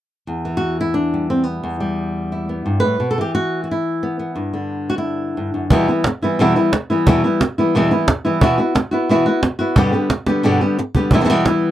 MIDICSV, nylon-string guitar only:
0, 0, Header, 1, 3, 480
1, 0, Start_track
1, 0, Key_signature, 1, "minor"
1, 0, Tempo, 339175
1, 376, Time_signature, 4, 2, 24, 8
1, 16572, End_track
2, 0, Start_track
2, 0, Title_t, "Nylon-string guitar"
2, 0, Program_c, 0, 24
2, 386, Note_on_c, 0, 40, 46
2, 637, Note_on_c, 0, 52, 49
2, 807, Note_on_c, 0, 66, 66
2, 1135, Note_off_c, 0, 66, 0
2, 1141, Note_on_c, 0, 64, 67
2, 1319, Note_off_c, 0, 64, 0
2, 1330, Note_on_c, 0, 62, 59
2, 1610, Note_on_c, 0, 55, 32
2, 1833, Note_off_c, 0, 62, 0
2, 1839, Note_on_c, 0, 60, 59
2, 2030, Note_off_c, 0, 60, 0
2, 2030, Note_on_c, 0, 59, 53
2, 2296, Note_off_c, 0, 40, 0
2, 2313, Note_on_c, 0, 40, 49
2, 2536, Note_off_c, 0, 55, 0
2, 2547, Note_off_c, 0, 52, 0
2, 2553, Note_on_c, 0, 55, 47
2, 3126, Note_off_c, 0, 59, 0
2, 3285, Note_on_c, 0, 64, 37
2, 3526, Note_on_c, 0, 59, 31
2, 3754, Note_off_c, 0, 40, 0
2, 3759, Note_on_c, 0, 43, 49
2, 3961, Note_on_c, 0, 71, 79
2, 3999, Note_off_c, 0, 43, 0
2, 4012, Note_on_c, 0, 45, 42
2, 4211, Note_off_c, 0, 55, 0
2, 4215, Note_off_c, 0, 64, 0
2, 4237, Note_off_c, 0, 45, 0
2, 4243, Note_on_c, 0, 47, 58
2, 4391, Note_off_c, 0, 71, 0
2, 4396, Note_on_c, 0, 69, 66
2, 4439, Note_off_c, 0, 59, 0
2, 4482, Note_off_c, 0, 47, 0
2, 4500, Note_on_c, 0, 52, 50
2, 4523, Note_off_c, 0, 69, 0
2, 4541, Note_on_c, 0, 67, 59
2, 4730, Note_off_c, 0, 67, 0
2, 4735, Note_on_c, 0, 66, 70
2, 5129, Note_off_c, 0, 66, 0
2, 5146, Note_on_c, 0, 66, 32
2, 5248, Note_off_c, 0, 66, 0
2, 5256, Note_on_c, 0, 64, 49
2, 5701, Note_on_c, 0, 59, 37
2, 5930, Note_off_c, 0, 59, 0
2, 5935, Note_on_c, 0, 59, 35
2, 6147, Note_off_c, 0, 52, 0
2, 6164, Note_on_c, 0, 43, 52
2, 6418, Note_on_c, 0, 50, 41
2, 6461, Note_off_c, 0, 64, 0
2, 6929, Note_on_c, 0, 66, 72
2, 7041, Note_off_c, 0, 66, 0
2, 7047, Note_on_c, 0, 64, 56
2, 7586, Note_off_c, 0, 43, 0
2, 7603, Note_on_c, 0, 43, 48
2, 7835, Note_off_c, 0, 43, 0
2, 7840, Note_on_c, 0, 42, 43
2, 7990, Note_off_c, 0, 64, 0
2, 8069, Note_off_c, 0, 42, 0
2, 8075, Note_on_c, 0, 40, 75
2, 8077, Note_on_c, 0, 47, 73
2, 8083, Note_off_c, 0, 50, 0
2, 8089, Note_off_c, 0, 59, 0
2, 8089, Note_on_c, 0, 52, 84
2, 8094, Note_on_c, 0, 55, 76
2, 8095, Note_on_c, 0, 59, 84
2, 8110, Note_on_c, 0, 64, 81
2, 8306, Note_off_c, 0, 64, 0
2, 8311, Note_off_c, 0, 40, 0
2, 8313, Note_off_c, 0, 47, 0
2, 8319, Note_off_c, 0, 52, 0
2, 8321, Note_off_c, 0, 55, 0
2, 8322, Note_off_c, 0, 59, 0
2, 8323, Note_on_c, 0, 64, 42
2, 8337, Note_on_c, 0, 59, 51
2, 8350, Note_on_c, 0, 55, 37
2, 8358, Note_on_c, 0, 52, 37
2, 8555, Note_off_c, 0, 64, 0
2, 8562, Note_off_c, 0, 59, 0
2, 8567, Note_off_c, 0, 52, 0
2, 8569, Note_off_c, 0, 55, 0
2, 8809, Note_on_c, 0, 64, 53
2, 8826, Note_on_c, 0, 59, 52
2, 8839, Note_on_c, 0, 55, 41
2, 8841, Note_on_c, 0, 52, 48
2, 9038, Note_off_c, 0, 64, 0
2, 9044, Note_off_c, 0, 52, 0
2, 9046, Note_off_c, 0, 59, 0
2, 9046, Note_on_c, 0, 40, 71
2, 9052, Note_off_c, 0, 55, 0
2, 9057, Note_on_c, 0, 47, 77
2, 9061, Note_on_c, 0, 52, 71
2, 9068, Note_on_c, 0, 55, 87
2, 9073, Note_on_c, 0, 59, 78
2, 9076, Note_on_c, 0, 64, 80
2, 9264, Note_off_c, 0, 64, 0
2, 9275, Note_off_c, 0, 40, 0
2, 9275, Note_off_c, 0, 59, 0
2, 9281, Note_off_c, 0, 47, 0
2, 9281, Note_on_c, 0, 64, 52
2, 9282, Note_off_c, 0, 55, 0
2, 9283, Note_off_c, 0, 52, 0
2, 9291, Note_on_c, 0, 59, 49
2, 9299, Note_on_c, 0, 55, 48
2, 9315, Note_on_c, 0, 52, 45
2, 9512, Note_off_c, 0, 52, 0
2, 9513, Note_off_c, 0, 64, 0
2, 9518, Note_off_c, 0, 55, 0
2, 9518, Note_off_c, 0, 59, 0
2, 9763, Note_on_c, 0, 64, 56
2, 9775, Note_on_c, 0, 59, 46
2, 9788, Note_on_c, 0, 55, 43
2, 9794, Note_on_c, 0, 52, 48
2, 9993, Note_off_c, 0, 64, 0
2, 9997, Note_on_c, 0, 40, 77
2, 9998, Note_off_c, 0, 52, 0
2, 9999, Note_off_c, 0, 59, 0
2, 10005, Note_off_c, 0, 55, 0
2, 10008, Note_on_c, 0, 47, 83
2, 10015, Note_on_c, 0, 52, 86
2, 10019, Note_on_c, 0, 55, 77
2, 10021, Note_on_c, 0, 59, 79
2, 10035, Note_on_c, 0, 64, 86
2, 10229, Note_off_c, 0, 40, 0
2, 10231, Note_off_c, 0, 64, 0
2, 10235, Note_off_c, 0, 47, 0
2, 10238, Note_off_c, 0, 52, 0
2, 10241, Note_off_c, 0, 55, 0
2, 10242, Note_off_c, 0, 59, 0
2, 10248, Note_on_c, 0, 64, 53
2, 10256, Note_on_c, 0, 59, 45
2, 10270, Note_on_c, 0, 55, 50
2, 10284, Note_on_c, 0, 52, 40
2, 10474, Note_off_c, 0, 64, 0
2, 10478, Note_off_c, 0, 59, 0
2, 10485, Note_off_c, 0, 55, 0
2, 10486, Note_off_c, 0, 52, 0
2, 10729, Note_on_c, 0, 64, 55
2, 10743, Note_on_c, 0, 59, 53
2, 10744, Note_on_c, 0, 55, 46
2, 10764, Note_on_c, 0, 52, 37
2, 10954, Note_off_c, 0, 64, 0
2, 10960, Note_off_c, 0, 52, 0
2, 10961, Note_off_c, 0, 55, 0
2, 10961, Note_off_c, 0, 59, 0
2, 10967, Note_on_c, 0, 40, 67
2, 10975, Note_on_c, 0, 47, 73
2, 10977, Note_on_c, 0, 52, 76
2, 10989, Note_on_c, 0, 59, 81
2, 10991, Note_on_c, 0, 55, 69
2, 10998, Note_on_c, 0, 64, 81
2, 11178, Note_off_c, 0, 64, 0
2, 11191, Note_off_c, 0, 59, 0
2, 11192, Note_off_c, 0, 40, 0
2, 11195, Note_on_c, 0, 64, 51
2, 11196, Note_off_c, 0, 47, 0
2, 11197, Note_off_c, 0, 52, 0
2, 11200, Note_off_c, 0, 55, 0
2, 11208, Note_on_c, 0, 59, 47
2, 11217, Note_on_c, 0, 55, 46
2, 11236, Note_on_c, 0, 52, 46
2, 11421, Note_off_c, 0, 52, 0
2, 11423, Note_off_c, 0, 55, 0
2, 11426, Note_off_c, 0, 64, 0
2, 11432, Note_off_c, 0, 59, 0
2, 11670, Note_on_c, 0, 64, 51
2, 11679, Note_on_c, 0, 59, 46
2, 11692, Note_on_c, 0, 55, 47
2, 11695, Note_on_c, 0, 52, 44
2, 11897, Note_off_c, 0, 52, 0
2, 11902, Note_off_c, 0, 64, 0
2, 11905, Note_on_c, 0, 47, 75
2, 11906, Note_off_c, 0, 59, 0
2, 11913, Note_off_c, 0, 55, 0
2, 11914, Note_on_c, 0, 52, 85
2, 11925, Note_on_c, 0, 59, 83
2, 11933, Note_on_c, 0, 64, 83
2, 11938, Note_on_c, 0, 66, 87
2, 12122, Note_off_c, 0, 66, 0
2, 12139, Note_off_c, 0, 47, 0
2, 12139, Note_on_c, 0, 66, 49
2, 12143, Note_off_c, 0, 64, 0
2, 12144, Note_off_c, 0, 52, 0
2, 12149, Note_off_c, 0, 59, 0
2, 12160, Note_on_c, 0, 64, 46
2, 12171, Note_on_c, 0, 59, 43
2, 12376, Note_off_c, 0, 66, 0
2, 12377, Note_off_c, 0, 59, 0
2, 12380, Note_off_c, 0, 64, 0
2, 12613, Note_on_c, 0, 66, 54
2, 12632, Note_on_c, 0, 64, 55
2, 12649, Note_on_c, 0, 59, 48
2, 12852, Note_off_c, 0, 66, 0
2, 12861, Note_off_c, 0, 64, 0
2, 12870, Note_off_c, 0, 59, 0
2, 12870, Note_on_c, 0, 47, 64
2, 12884, Note_on_c, 0, 52, 68
2, 12890, Note_on_c, 0, 59, 80
2, 12897, Note_on_c, 0, 64, 85
2, 12908, Note_on_c, 0, 66, 76
2, 13085, Note_off_c, 0, 66, 0
2, 13100, Note_off_c, 0, 47, 0
2, 13102, Note_on_c, 0, 66, 61
2, 13107, Note_off_c, 0, 52, 0
2, 13110, Note_off_c, 0, 59, 0
2, 13113, Note_off_c, 0, 64, 0
2, 13128, Note_on_c, 0, 64, 46
2, 13135, Note_on_c, 0, 59, 41
2, 13329, Note_off_c, 0, 59, 0
2, 13330, Note_off_c, 0, 64, 0
2, 13335, Note_off_c, 0, 66, 0
2, 13568, Note_on_c, 0, 66, 49
2, 13584, Note_on_c, 0, 64, 49
2, 13599, Note_on_c, 0, 59, 42
2, 13807, Note_off_c, 0, 66, 0
2, 13809, Note_on_c, 0, 43, 75
2, 13813, Note_on_c, 0, 47, 79
2, 13815, Note_off_c, 0, 64, 0
2, 13823, Note_off_c, 0, 59, 0
2, 13826, Note_on_c, 0, 50, 85
2, 13836, Note_on_c, 0, 55, 82
2, 13837, Note_on_c, 0, 59, 90
2, 13841, Note_on_c, 0, 67, 85
2, 14027, Note_off_c, 0, 67, 0
2, 14041, Note_off_c, 0, 59, 0
2, 14044, Note_on_c, 0, 67, 46
2, 14047, Note_off_c, 0, 43, 0
2, 14050, Note_off_c, 0, 47, 0
2, 14056, Note_off_c, 0, 50, 0
2, 14056, Note_off_c, 0, 55, 0
2, 14058, Note_on_c, 0, 59, 49
2, 14073, Note_on_c, 0, 55, 48
2, 14082, Note_on_c, 0, 50, 38
2, 14284, Note_off_c, 0, 50, 0
2, 14285, Note_off_c, 0, 67, 0
2, 14289, Note_off_c, 0, 55, 0
2, 14292, Note_off_c, 0, 59, 0
2, 14530, Note_on_c, 0, 67, 56
2, 14549, Note_on_c, 0, 59, 51
2, 14559, Note_on_c, 0, 55, 41
2, 14567, Note_on_c, 0, 50, 48
2, 14766, Note_on_c, 0, 43, 73
2, 14767, Note_off_c, 0, 67, 0
2, 14769, Note_off_c, 0, 50, 0
2, 14775, Note_on_c, 0, 47, 73
2, 14776, Note_off_c, 0, 55, 0
2, 14776, Note_off_c, 0, 59, 0
2, 14786, Note_on_c, 0, 50, 79
2, 14793, Note_on_c, 0, 55, 74
2, 14795, Note_on_c, 0, 59, 79
2, 14798, Note_on_c, 0, 67, 70
2, 14999, Note_off_c, 0, 67, 0
2, 15003, Note_off_c, 0, 59, 0
2, 15005, Note_off_c, 0, 43, 0
2, 15009, Note_off_c, 0, 47, 0
2, 15015, Note_off_c, 0, 50, 0
2, 15016, Note_on_c, 0, 67, 51
2, 15018, Note_off_c, 0, 55, 0
2, 15020, Note_on_c, 0, 59, 51
2, 15037, Note_on_c, 0, 55, 48
2, 15044, Note_on_c, 0, 50, 42
2, 15249, Note_off_c, 0, 67, 0
2, 15251, Note_off_c, 0, 59, 0
2, 15255, Note_off_c, 0, 50, 0
2, 15260, Note_off_c, 0, 55, 0
2, 15503, Note_on_c, 0, 67, 50
2, 15515, Note_on_c, 0, 59, 46
2, 15523, Note_on_c, 0, 55, 45
2, 15534, Note_on_c, 0, 50, 38
2, 15732, Note_off_c, 0, 67, 0
2, 15738, Note_off_c, 0, 59, 0
2, 15740, Note_on_c, 0, 40, 78
2, 15742, Note_off_c, 0, 55, 0
2, 15748, Note_off_c, 0, 50, 0
2, 15752, Note_on_c, 0, 47, 70
2, 15762, Note_on_c, 0, 52, 72
2, 15765, Note_on_c, 0, 55, 79
2, 15771, Note_on_c, 0, 59, 84
2, 15776, Note_on_c, 0, 64, 81
2, 15838, Note_off_c, 0, 47, 0
2, 15845, Note_off_c, 0, 52, 0
2, 15852, Note_off_c, 0, 55, 0
2, 15854, Note_off_c, 0, 59, 0
2, 15855, Note_on_c, 0, 47, 46
2, 15860, Note_off_c, 0, 64, 0
2, 15862, Note_on_c, 0, 52, 43
2, 15869, Note_on_c, 0, 55, 50
2, 15871, Note_on_c, 0, 59, 50
2, 15877, Note_on_c, 0, 64, 56
2, 15898, Note_off_c, 0, 47, 0
2, 15909, Note_off_c, 0, 52, 0
2, 15915, Note_off_c, 0, 55, 0
2, 15915, Note_on_c, 0, 47, 61
2, 15916, Note_off_c, 0, 59, 0
2, 15916, Note_off_c, 0, 64, 0
2, 15926, Note_on_c, 0, 52, 61
2, 15932, Note_on_c, 0, 55, 59
2, 15933, Note_on_c, 0, 59, 69
2, 15933, Note_on_c, 0, 64, 59
2, 15971, Note_off_c, 0, 40, 0
2, 15972, Note_off_c, 0, 47, 0
2, 15972, Note_off_c, 0, 52, 0
2, 15972, Note_off_c, 0, 55, 0
2, 15976, Note_off_c, 0, 59, 0
2, 15978, Note_off_c, 0, 64, 0
2, 15987, Note_on_c, 0, 40, 72
2, 15988, Note_on_c, 0, 47, 78
2, 15989, Note_on_c, 0, 52, 72
2, 15989, Note_on_c, 0, 55, 85
2, 15993, Note_on_c, 0, 59, 73
2, 15995, Note_on_c, 0, 64, 87
2, 16196, Note_off_c, 0, 64, 0
2, 16213, Note_on_c, 0, 64, 56
2, 16214, Note_off_c, 0, 40, 0
2, 16214, Note_off_c, 0, 47, 0
2, 16214, Note_off_c, 0, 52, 0
2, 16215, Note_off_c, 0, 55, 0
2, 16216, Note_off_c, 0, 59, 0
2, 16234, Note_on_c, 0, 55, 42
2, 16235, Note_on_c, 0, 59, 51
2, 16253, Note_on_c, 0, 52, 50
2, 16572, Note_off_c, 0, 52, 0
2, 16572, Note_off_c, 0, 55, 0
2, 16572, Note_off_c, 0, 59, 0
2, 16572, Note_off_c, 0, 64, 0
2, 16572, End_track
3, 0, Start_track
3, 0, Title_t, "Muted nylon-string guitar strokes"
3, 8582, Note_on_c, 9, 29, 67
3, 8724, Note_off_c, 9, 29, 0
3, 9528, Note_on_c, 9, 29, 56
3, 9670, Note_off_c, 9, 29, 0
3, 10493, Note_on_c, 9, 29, 73
3, 10634, Note_off_c, 9, 29, 0
3, 11428, Note_on_c, 9, 29, 59
3, 11569, Note_off_c, 9, 29, 0
3, 12382, Note_on_c, 9, 29, 67
3, 12523, Note_off_c, 9, 29, 0
3, 13341, Note_on_c, 9, 29, 61
3, 13482, Note_off_c, 9, 29, 0
3, 14301, Note_on_c, 9, 29, 75
3, 14442, Note_off_c, 9, 29, 0
3, 15263, Note_on_c, 9, 29, 64
3, 15405, Note_off_c, 9, 29, 0
3, 16572, End_track
0, 0, End_of_file